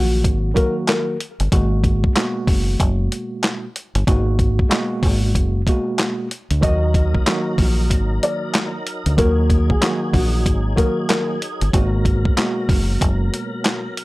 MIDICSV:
0, 0, Header, 1, 6, 480
1, 0, Start_track
1, 0, Key_signature, -6, "minor"
1, 0, Tempo, 638298
1, 1144, Time_signature, 4, 2, 24, 8
1, 10560, End_track
2, 0, Start_track
2, 0, Title_t, "Upright piano"
2, 0, Program_c, 0, 0
2, 0, Note_on_c, 0, 66, 84
2, 161, Note_off_c, 0, 66, 0
2, 424, Note_on_c, 0, 70, 89
2, 557, Note_off_c, 0, 70, 0
2, 662, Note_on_c, 0, 70, 84
2, 879, Note_off_c, 0, 70, 0
2, 4984, Note_on_c, 0, 75, 93
2, 5581, Note_off_c, 0, 75, 0
2, 6190, Note_on_c, 0, 74, 76
2, 6403, Note_off_c, 0, 74, 0
2, 6904, Note_on_c, 0, 70, 102
2, 7268, Note_off_c, 0, 70, 0
2, 7302, Note_on_c, 0, 68, 69
2, 7610, Note_off_c, 0, 68, 0
2, 7627, Note_on_c, 0, 66, 81
2, 7842, Note_off_c, 0, 66, 0
2, 8104, Note_on_c, 0, 70, 92
2, 8237, Note_off_c, 0, 70, 0
2, 8340, Note_on_c, 0, 70, 83
2, 8558, Note_off_c, 0, 70, 0
2, 10560, End_track
3, 0, Start_track
3, 0, Title_t, "Tonewheel organ"
3, 0, Program_c, 1, 16
3, 4977, Note_on_c, 1, 63, 69
3, 4977, Note_on_c, 1, 70, 81
3, 4978, Note_on_c, 1, 54, 78
3, 6881, Note_off_c, 1, 70, 0
3, 6916, Note_on_c, 1, 68, 87
3, 8790, Note_off_c, 1, 63, 0
3, 8811, Note_off_c, 1, 68, 0
3, 8821, Note_on_c, 1, 70, 77
3, 8822, Note_on_c, 1, 47, 69
3, 10560, Note_off_c, 1, 47, 0
3, 10560, Note_off_c, 1, 54, 0
3, 10560, Note_off_c, 1, 70, 0
3, 10560, End_track
4, 0, Start_track
4, 0, Title_t, "Tine electric piano"
4, 0, Program_c, 2, 4
4, 0, Note_on_c, 2, 51, 92
4, 0, Note_on_c, 2, 54, 92
4, 0, Note_on_c, 2, 58, 91
4, 0, Note_on_c, 2, 66, 108
4, 376, Note_off_c, 2, 51, 0
4, 378, Note_off_c, 2, 54, 0
4, 379, Note_off_c, 2, 58, 0
4, 381, Note_off_c, 2, 66, 0
4, 409, Note_on_c, 2, 51, 91
4, 412, Note_on_c, 2, 54, 93
4, 414, Note_on_c, 2, 58, 94
4, 418, Note_on_c, 2, 66, 100
4, 867, Note_off_c, 2, 51, 0
4, 868, Note_off_c, 2, 54, 0
4, 870, Note_off_c, 2, 58, 0
4, 871, Note_off_c, 2, 66, 0
4, 1143, Note_on_c, 2, 47, 97
4, 1146, Note_on_c, 2, 56, 94
4, 1149, Note_on_c, 2, 58, 83
4, 1152, Note_on_c, 2, 66, 104
4, 1594, Note_off_c, 2, 47, 0
4, 1595, Note_off_c, 2, 56, 0
4, 1597, Note_off_c, 2, 58, 0
4, 1599, Note_off_c, 2, 66, 0
4, 1618, Note_on_c, 2, 47, 98
4, 1621, Note_on_c, 2, 56, 84
4, 1624, Note_on_c, 2, 58, 78
4, 1627, Note_on_c, 2, 66, 103
4, 2747, Note_off_c, 2, 47, 0
4, 2749, Note_off_c, 2, 56, 0
4, 2750, Note_off_c, 2, 58, 0
4, 2751, Note_off_c, 2, 66, 0
4, 3064, Note_on_c, 2, 47, 92
4, 3066, Note_on_c, 2, 56, 83
4, 3070, Note_on_c, 2, 58, 88
4, 3073, Note_on_c, 2, 66, 109
4, 3514, Note_off_c, 2, 47, 0
4, 3516, Note_off_c, 2, 56, 0
4, 3517, Note_off_c, 2, 58, 0
4, 3519, Note_off_c, 2, 66, 0
4, 3527, Note_on_c, 2, 47, 98
4, 3530, Note_on_c, 2, 56, 91
4, 3532, Note_on_c, 2, 58, 86
4, 3536, Note_on_c, 2, 66, 102
4, 4211, Note_off_c, 2, 47, 0
4, 4213, Note_off_c, 2, 56, 0
4, 4214, Note_off_c, 2, 58, 0
4, 4216, Note_off_c, 2, 66, 0
4, 4271, Note_on_c, 2, 47, 102
4, 4273, Note_on_c, 2, 56, 92
4, 4277, Note_on_c, 2, 58, 89
4, 4279, Note_on_c, 2, 66, 97
4, 4718, Note_off_c, 2, 47, 0
4, 4719, Note_off_c, 2, 56, 0
4, 4721, Note_off_c, 2, 58, 0
4, 4722, Note_off_c, 2, 66, 0
4, 4970, Note_on_c, 2, 51, 97
4, 4973, Note_on_c, 2, 54, 86
4, 4976, Note_on_c, 2, 58, 86
4, 4979, Note_on_c, 2, 66, 105
4, 5427, Note_off_c, 2, 51, 0
4, 5429, Note_off_c, 2, 54, 0
4, 5430, Note_off_c, 2, 58, 0
4, 5432, Note_off_c, 2, 66, 0
4, 5458, Note_on_c, 2, 51, 92
4, 5461, Note_on_c, 2, 54, 89
4, 5464, Note_on_c, 2, 58, 85
4, 5467, Note_on_c, 2, 66, 106
4, 6587, Note_off_c, 2, 51, 0
4, 6589, Note_off_c, 2, 54, 0
4, 6590, Note_off_c, 2, 58, 0
4, 6591, Note_off_c, 2, 66, 0
4, 6898, Note_on_c, 2, 51, 96
4, 6901, Note_on_c, 2, 54, 90
4, 6904, Note_on_c, 2, 58, 85
4, 6907, Note_on_c, 2, 66, 105
4, 7351, Note_off_c, 2, 51, 0
4, 7353, Note_off_c, 2, 54, 0
4, 7354, Note_off_c, 2, 58, 0
4, 7356, Note_off_c, 2, 66, 0
4, 7377, Note_on_c, 2, 51, 92
4, 7380, Note_on_c, 2, 54, 86
4, 7383, Note_on_c, 2, 58, 91
4, 7386, Note_on_c, 2, 66, 109
4, 8056, Note_off_c, 2, 51, 0
4, 8058, Note_off_c, 2, 54, 0
4, 8059, Note_off_c, 2, 58, 0
4, 8060, Note_off_c, 2, 66, 0
4, 8089, Note_on_c, 2, 51, 91
4, 8092, Note_on_c, 2, 54, 93
4, 8095, Note_on_c, 2, 58, 92
4, 8098, Note_on_c, 2, 66, 100
4, 8547, Note_off_c, 2, 51, 0
4, 8548, Note_off_c, 2, 54, 0
4, 8550, Note_off_c, 2, 58, 0
4, 8551, Note_off_c, 2, 66, 0
4, 8824, Note_on_c, 2, 47, 96
4, 8827, Note_on_c, 2, 56, 93
4, 8830, Note_on_c, 2, 58, 84
4, 8833, Note_on_c, 2, 66, 103
4, 9274, Note_off_c, 2, 47, 0
4, 9276, Note_off_c, 2, 56, 0
4, 9277, Note_off_c, 2, 58, 0
4, 9279, Note_off_c, 2, 66, 0
4, 9300, Note_on_c, 2, 47, 96
4, 9303, Note_on_c, 2, 56, 84
4, 9306, Note_on_c, 2, 58, 78
4, 9309, Note_on_c, 2, 66, 102
4, 10428, Note_off_c, 2, 47, 0
4, 10429, Note_off_c, 2, 56, 0
4, 10431, Note_off_c, 2, 58, 0
4, 10432, Note_off_c, 2, 66, 0
4, 10560, End_track
5, 0, Start_track
5, 0, Title_t, "Fingered electric bass"
5, 0, Program_c, 3, 33
5, 0, Note_on_c, 3, 34, 91
5, 185, Note_off_c, 3, 34, 0
5, 185, Note_on_c, 3, 32, 97
5, 393, Note_off_c, 3, 32, 0
5, 1053, Note_on_c, 3, 31, 94
5, 1132, Note_off_c, 3, 31, 0
5, 1143, Note_on_c, 3, 32, 110
5, 1560, Note_off_c, 3, 32, 0
5, 1862, Note_on_c, 3, 30, 85
5, 2071, Note_off_c, 3, 30, 0
5, 2105, Note_on_c, 3, 30, 103
5, 2312, Note_off_c, 3, 30, 0
5, 2972, Note_on_c, 3, 31, 94
5, 3052, Note_off_c, 3, 31, 0
5, 3064, Note_on_c, 3, 32, 110
5, 3480, Note_off_c, 3, 32, 0
5, 3782, Note_on_c, 3, 32, 89
5, 4025, Note_off_c, 3, 32, 0
5, 4025, Note_on_c, 3, 30, 102
5, 4233, Note_off_c, 3, 30, 0
5, 4893, Note_on_c, 3, 38, 88
5, 4972, Note_off_c, 3, 38, 0
5, 4985, Note_on_c, 3, 39, 102
5, 5401, Note_off_c, 3, 39, 0
5, 5702, Note_on_c, 3, 34, 102
5, 5946, Note_off_c, 3, 34, 0
5, 5946, Note_on_c, 3, 32, 95
5, 6153, Note_off_c, 3, 32, 0
5, 6814, Note_on_c, 3, 38, 92
5, 6893, Note_off_c, 3, 38, 0
5, 6905, Note_on_c, 3, 39, 106
5, 7321, Note_off_c, 3, 39, 0
5, 7622, Note_on_c, 3, 34, 93
5, 7866, Note_off_c, 3, 34, 0
5, 7866, Note_on_c, 3, 32, 95
5, 8073, Note_off_c, 3, 32, 0
5, 8735, Note_on_c, 3, 31, 96
5, 8813, Note_off_c, 3, 31, 0
5, 8825, Note_on_c, 3, 32, 109
5, 9241, Note_off_c, 3, 32, 0
5, 9543, Note_on_c, 3, 30, 85
5, 9752, Note_off_c, 3, 30, 0
5, 9786, Note_on_c, 3, 30, 100
5, 9993, Note_off_c, 3, 30, 0
5, 10560, End_track
6, 0, Start_track
6, 0, Title_t, "Drums"
6, 184, Note_on_c, 9, 36, 95
6, 186, Note_on_c, 9, 42, 106
6, 259, Note_off_c, 9, 36, 0
6, 261, Note_off_c, 9, 42, 0
6, 421, Note_on_c, 9, 36, 91
6, 427, Note_on_c, 9, 42, 79
6, 497, Note_off_c, 9, 36, 0
6, 502, Note_off_c, 9, 42, 0
6, 660, Note_on_c, 9, 42, 85
6, 664, Note_on_c, 9, 39, 100
6, 668, Note_on_c, 9, 38, 123
6, 735, Note_off_c, 9, 42, 0
6, 739, Note_off_c, 9, 39, 0
6, 743, Note_off_c, 9, 38, 0
6, 906, Note_on_c, 9, 42, 74
6, 981, Note_off_c, 9, 42, 0
6, 1052, Note_on_c, 9, 42, 62
6, 1127, Note_off_c, 9, 42, 0
6, 1143, Note_on_c, 9, 36, 122
6, 1146, Note_on_c, 9, 42, 106
6, 1218, Note_off_c, 9, 36, 0
6, 1221, Note_off_c, 9, 42, 0
6, 1381, Note_on_c, 9, 36, 93
6, 1383, Note_on_c, 9, 42, 66
6, 1456, Note_off_c, 9, 36, 0
6, 1459, Note_off_c, 9, 42, 0
6, 1533, Note_on_c, 9, 36, 99
6, 1608, Note_off_c, 9, 36, 0
6, 1623, Note_on_c, 9, 42, 103
6, 1627, Note_on_c, 9, 39, 103
6, 1630, Note_on_c, 9, 38, 127
6, 1698, Note_off_c, 9, 42, 0
6, 1702, Note_off_c, 9, 39, 0
6, 1706, Note_off_c, 9, 38, 0
6, 1861, Note_on_c, 9, 36, 102
6, 1864, Note_on_c, 9, 46, 56
6, 1869, Note_on_c, 9, 38, 41
6, 1936, Note_off_c, 9, 36, 0
6, 1939, Note_off_c, 9, 46, 0
6, 1944, Note_off_c, 9, 38, 0
6, 2104, Note_on_c, 9, 36, 92
6, 2107, Note_on_c, 9, 42, 111
6, 2179, Note_off_c, 9, 36, 0
6, 2182, Note_off_c, 9, 42, 0
6, 2346, Note_on_c, 9, 42, 76
6, 2422, Note_off_c, 9, 42, 0
6, 2580, Note_on_c, 9, 42, 82
6, 2584, Note_on_c, 9, 39, 100
6, 2588, Note_on_c, 9, 38, 126
6, 2655, Note_off_c, 9, 42, 0
6, 2660, Note_off_c, 9, 39, 0
6, 2663, Note_off_c, 9, 38, 0
6, 2826, Note_on_c, 9, 42, 73
6, 2902, Note_off_c, 9, 42, 0
6, 2972, Note_on_c, 9, 42, 64
6, 3047, Note_off_c, 9, 42, 0
6, 3063, Note_on_c, 9, 36, 127
6, 3066, Note_on_c, 9, 42, 106
6, 3138, Note_off_c, 9, 36, 0
6, 3141, Note_off_c, 9, 42, 0
6, 3301, Note_on_c, 9, 36, 92
6, 3303, Note_on_c, 9, 42, 65
6, 3376, Note_off_c, 9, 36, 0
6, 3378, Note_off_c, 9, 42, 0
6, 3453, Note_on_c, 9, 36, 98
6, 3528, Note_off_c, 9, 36, 0
6, 3543, Note_on_c, 9, 42, 99
6, 3547, Note_on_c, 9, 39, 98
6, 3550, Note_on_c, 9, 38, 127
6, 3618, Note_off_c, 9, 42, 0
6, 3622, Note_off_c, 9, 39, 0
6, 3626, Note_off_c, 9, 38, 0
6, 3781, Note_on_c, 9, 36, 98
6, 3784, Note_on_c, 9, 46, 56
6, 3856, Note_off_c, 9, 36, 0
6, 3859, Note_off_c, 9, 46, 0
6, 4024, Note_on_c, 9, 36, 90
6, 4026, Note_on_c, 9, 42, 103
6, 4099, Note_off_c, 9, 36, 0
6, 4102, Note_off_c, 9, 42, 0
6, 4262, Note_on_c, 9, 36, 92
6, 4268, Note_on_c, 9, 42, 77
6, 4337, Note_off_c, 9, 36, 0
6, 4343, Note_off_c, 9, 42, 0
6, 4500, Note_on_c, 9, 42, 86
6, 4505, Note_on_c, 9, 39, 99
6, 4508, Note_on_c, 9, 38, 120
6, 4575, Note_off_c, 9, 42, 0
6, 4580, Note_off_c, 9, 39, 0
6, 4583, Note_off_c, 9, 38, 0
6, 4747, Note_on_c, 9, 42, 72
6, 4822, Note_off_c, 9, 42, 0
6, 4892, Note_on_c, 9, 42, 63
6, 4968, Note_off_c, 9, 42, 0
6, 4983, Note_on_c, 9, 36, 124
6, 4987, Note_on_c, 9, 42, 104
6, 5059, Note_off_c, 9, 36, 0
6, 5062, Note_off_c, 9, 42, 0
6, 5221, Note_on_c, 9, 36, 89
6, 5224, Note_on_c, 9, 42, 68
6, 5297, Note_off_c, 9, 36, 0
6, 5299, Note_off_c, 9, 42, 0
6, 5374, Note_on_c, 9, 36, 96
6, 5449, Note_off_c, 9, 36, 0
6, 5464, Note_on_c, 9, 42, 100
6, 5467, Note_on_c, 9, 39, 102
6, 5471, Note_on_c, 9, 38, 127
6, 5539, Note_off_c, 9, 42, 0
6, 5543, Note_off_c, 9, 39, 0
6, 5546, Note_off_c, 9, 38, 0
6, 5701, Note_on_c, 9, 36, 101
6, 5704, Note_on_c, 9, 46, 55
6, 5710, Note_on_c, 9, 38, 41
6, 5777, Note_off_c, 9, 36, 0
6, 5780, Note_off_c, 9, 46, 0
6, 5785, Note_off_c, 9, 38, 0
6, 5945, Note_on_c, 9, 36, 90
6, 5947, Note_on_c, 9, 42, 108
6, 6020, Note_off_c, 9, 36, 0
6, 6022, Note_off_c, 9, 42, 0
6, 6189, Note_on_c, 9, 42, 80
6, 6264, Note_off_c, 9, 42, 0
6, 6421, Note_on_c, 9, 42, 83
6, 6426, Note_on_c, 9, 39, 99
6, 6430, Note_on_c, 9, 38, 123
6, 6496, Note_off_c, 9, 42, 0
6, 6501, Note_off_c, 9, 39, 0
6, 6505, Note_off_c, 9, 38, 0
6, 6667, Note_on_c, 9, 42, 74
6, 6743, Note_off_c, 9, 42, 0
6, 6813, Note_on_c, 9, 42, 65
6, 6889, Note_off_c, 9, 42, 0
6, 6904, Note_on_c, 9, 36, 126
6, 6907, Note_on_c, 9, 42, 101
6, 6979, Note_off_c, 9, 36, 0
6, 6982, Note_off_c, 9, 42, 0
6, 7142, Note_on_c, 9, 36, 88
6, 7145, Note_on_c, 9, 42, 67
6, 7217, Note_off_c, 9, 36, 0
6, 7220, Note_off_c, 9, 42, 0
6, 7294, Note_on_c, 9, 36, 100
6, 7369, Note_off_c, 9, 36, 0
6, 7384, Note_on_c, 9, 42, 104
6, 7388, Note_on_c, 9, 39, 100
6, 7392, Note_on_c, 9, 38, 127
6, 7459, Note_off_c, 9, 42, 0
6, 7463, Note_off_c, 9, 39, 0
6, 7467, Note_off_c, 9, 38, 0
6, 7622, Note_on_c, 9, 36, 101
6, 7624, Note_on_c, 9, 46, 57
6, 7697, Note_off_c, 9, 36, 0
6, 7700, Note_off_c, 9, 46, 0
6, 7865, Note_on_c, 9, 36, 90
6, 7867, Note_on_c, 9, 42, 107
6, 7940, Note_off_c, 9, 36, 0
6, 7943, Note_off_c, 9, 42, 0
6, 8103, Note_on_c, 9, 36, 88
6, 8109, Note_on_c, 9, 42, 77
6, 8178, Note_off_c, 9, 36, 0
6, 8184, Note_off_c, 9, 42, 0
6, 8341, Note_on_c, 9, 42, 85
6, 8346, Note_on_c, 9, 39, 100
6, 8350, Note_on_c, 9, 38, 127
6, 8416, Note_off_c, 9, 42, 0
6, 8421, Note_off_c, 9, 39, 0
6, 8425, Note_off_c, 9, 38, 0
6, 8588, Note_on_c, 9, 42, 75
6, 8664, Note_off_c, 9, 42, 0
6, 8734, Note_on_c, 9, 42, 64
6, 8809, Note_off_c, 9, 42, 0
6, 8825, Note_on_c, 9, 36, 127
6, 8828, Note_on_c, 9, 42, 105
6, 8900, Note_off_c, 9, 36, 0
6, 8903, Note_off_c, 9, 42, 0
6, 9063, Note_on_c, 9, 36, 89
6, 9066, Note_on_c, 9, 42, 69
6, 9138, Note_off_c, 9, 36, 0
6, 9141, Note_off_c, 9, 42, 0
6, 9215, Note_on_c, 9, 36, 100
6, 9290, Note_off_c, 9, 36, 0
6, 9305, Note_on_c, 9, 42, 99
6, 9309, Note_on_c, 9, 39, 101
6, 9313, Note_on_c, 9, 38, 127
6, 9380, Note_off_c, 9, 42, 0
6, 9384, Note_off_c, 9, 39, 0
6, 9388, Note_off_c, 9, 38, 0
6, 9542, Note_on_c, 9, 36, 100
6, 9545, Note_on_c, 9, 46, 58
6, 9551, Note_on_c, 9, 38, 41
6, 9617, Note_off_c, 9, 36, 0
6, 9620, Note_off_c, 9, 46, 0
6, 9626, Note_off_c, 9, 38, 0
6, 9785, Note_on_c, 9, 36, 92
6, 9788, Note_on_c, 9, 42, 109
6, 9861, Note_off_c, 9, 36, 0
6, 9864, Note_off_c, 9, 42, 0
6, 10029, Note_on_c, 9, 42, 77
6, 10104, Note_off_c, 9, 42, 0
6, 10262, Note_on_c, 9, 42, 86
6, 10266, Note_on_c, 9, 39, 98
6, 10270, Note_on_c, 9, 38, 127
6, 10337, Note_off_c, 9, 42, 0
6, 10342, Note_off_c, 9, 39, 0
6, 10345, Note_off_c, 9, 38, 0
6, 10509, Note_on_c, 9, 42, 73
6, 10560, Note_off_c, 9, 42, 0
6, 10560, End_track
0, 0, End_of_file